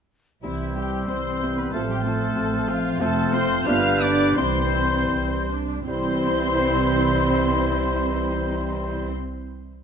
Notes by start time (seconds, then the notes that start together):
0.43 C2 E3 G3 C4 E4 C5 E5 E6
0.76 G3 C4 E4 G4 G5
1.08 C2 E3 C4 E4 C5 C6
1.41 C4 E4
1.57 B3 B4 B5
1.71 A1 F3 A3 C4 F4 A4 A5 F6
1.88 G3 G4 G5
2.04 A3 C4 F4 A4 A5
2.37 A1 C4 F4
2.68 F3 C4 F4 F5
3.00 F1 F3 A3 C4 F4 A4 C5 A5 F6
3.33 C4 F4 C5 C6
3.65 G1 D3 G3 B3 D4 F4 B4 F5 F6 G6
4.01 B3 D4 D5 D6
4.37 C2 E3 G3 C4 E4 C5 C6 G6
4.74 C4 E4
5.11 C2 C4
5.49 D4
5.87 C2 E3 G3 C4 E4 C5 C6